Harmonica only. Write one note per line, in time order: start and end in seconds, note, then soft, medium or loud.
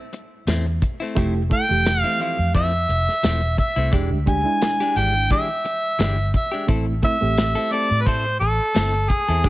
1.53 2.01 G5 medium
2.01 2.22 F5 medium
2.22 2.54 F5 medium
2.55 3.54 E5 medium
3.59 3.91 E5 medium
4.28 4.99 G#5 medium
4.97 5.31 G5 medium
5.32 6.31 E5 medium
6.36 6.67 E5 medium
7.05 7.74 E5 loud
7.72 8.02 D5 medium
8.01 8.08 B4 medium
8.07 8.39 C5 medium
8.40 9.11 A4 medium
9.09 9.49 G#4 medium